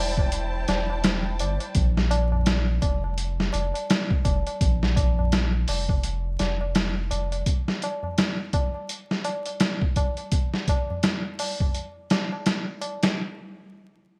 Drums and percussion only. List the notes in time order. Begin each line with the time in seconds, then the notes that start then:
0.17 kick, tabla na, tabla ge
0.32 closed hi-hat, tabla na
0.68 snare, closed hi-hat, tabla na
0.90 tabla na
1.04 snare, closed hi-hat, tabla na
1.39 closed hi-hat, tabla na
1.60 closed hi-hat, tabla na
1.75 kick, closed hi-hat, tabla na
1.97 snare
2.11 closed hi-hat, tabla na
2.32 tabla na, tabla ge
2.45 snare, closed hi-hat, tabla na
2.82 kick, closed hi-hat, tabla na
3.04 tabla na
3.18 closed hi-hat, tabla na
3.40 snare
3.53 closed hi-hat, tabla na
3.74 closed hi-hat, tabla na
3.89 snare, closed hi-hat, tabla na
4.11 kick
4.25 kick, closed hi-hat, tabla na
4.47 closed hi-hat, tabla na
4.61 kick, closed hi-hat, tabla na
4.83 snare
4.96 kick, closed hi-hat, tabla na
5.18 tabla na, tabla ge
5.32 snare, closed hi-hat, tabla na
5.68 open hi-hat, tabla na
5.89 kick, tabla na, tabla ge
6.04 closed hi-hat, tabla na
6.39 snare, closed hi-hat, tabla na
6.61 tabla na
6.75 snare, closed hi-hat, tabla na
7.11 closed hi-hat, tabla na
7.32 closed hi-hat, tabla na
7.46 kick, closed hi-hat, tabla na
7.68 snare
7.82 closed hi-hat, tabla na
8.03 tabla na, tabla ge
8.18 snare, closed hi-hat
8.53 kick, closed hi-hat, tabla na
8.74 tabla na
8.89 closed hi-hat, tabla na
9.11 snare
9.25 closed hi-hat, tabla na
9.46 closed hi-hat, tabla na
9.60 snare, closed hi-hat, tabla na
9.82 kick
9.96 kick, closed hi-hat, tabla na
10.17 closed hi-hat, tabla na
10.31 kick, closed hi-hat, tabla na
10.54 snare
10.68 kick, closed hi-hat, tabla na
10.90 tabla na, tabla ge
11.03 snare, closed hi-hat, tabla na
11.39 open hi-hat, tabla na
11.60 kick, tabla na, tabla ge
11.74 closed hi-hat, tabla na
12.10 snare, closed hi-hat, tabla na
12.32 tabla na
12.46 snare, closed hi-hat, tabla na
12.81 closed hi-hat, tabla na
13.03 snare, closed hi-hat, tabla na